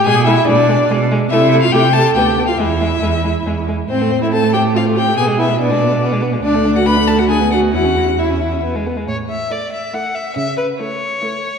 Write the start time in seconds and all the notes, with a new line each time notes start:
0.05 B2 G#3 G#4 G#5
0.26 G#3 E4 E5
0.47 B2 G#3 D4 D5
0.69 G#3
0.89 B2 G#3
1.11 G#3
1.30 C3 A3 E4 E5
1.53 A3
1.62 F4 F5
1.72 C3 A3 G4 G5
1.93 A3 A4 A5
2.15 D2 B3 G4 G5
2.37 B3
2.48 F4 F5
2.58 E2 G#3 E4 E5
2.81 G#3
3.02 E2 G#3
3.25 G#3
3.46 E2 G#3
3.68 G#3
3.89 A2 C4 C5
4.01 A3
4.11 C4
4.21 A3 E4 E5
4.32 C4 A4 A5
4.44 A3
4.53 C4 G4 G5
4.65 A3
4.74 C4 F4 F5
4.86 A3
4.95 C4 G4 G5
5.08 A3
5.17 B2 B3 G#4 G#5
5.28 G#3
5.38 B3 E4 E5
5.49 G#3
5.60 B3 D4 D5
5.70 G#3
5.81 B3
5.92 G#3
6.01 B3
6.12 G#3
6.22 B3
6.33 G#3
6.44 D2 D4 D5
6.54 A3
6.66 D4
6.76 A3 F#4 F#5
6.86 D4 B4 B5
6.97 A3
7.07 D4 A4 A5
7.18 A3 F#4 F#5
7.29 D4 G#4 G#5
7.40 B3
7.52 D4 F#4 F#5
7.62 B3
7.73 E2 E4 F#4 F#5
7.84 C#4
7.96 E4
8.08 C#4
8.19 E4 E5
8.30 C#4
8.41 E4
8.52 C#4
8.64 B3
8.75 G#3
8.86 B3
8.97 G#3
9.07 A2 C#5
9.29 E5
9.50 A3 E4 D5
9.72 E5
9.93 A3 E4 F#5
10.15 E5
10.36 C#3 E5
10.58 B4
10.80 A3 E4 C#5
11.22 A3 E4